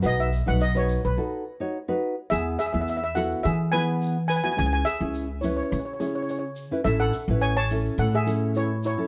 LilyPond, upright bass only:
\new Staff \with { instrumentName = "Upright bass" } { \clef bass \time 4/4 \key e \major \tempo 4 = 106 b,,8. b,,4 b,,16 r2 | e,8 r16 e,4~ e,16 e2 | cis,8 r16 cis,4~ cis,16 cis2 | a,,8 r16 a,,4~ a,,16 a,2 | }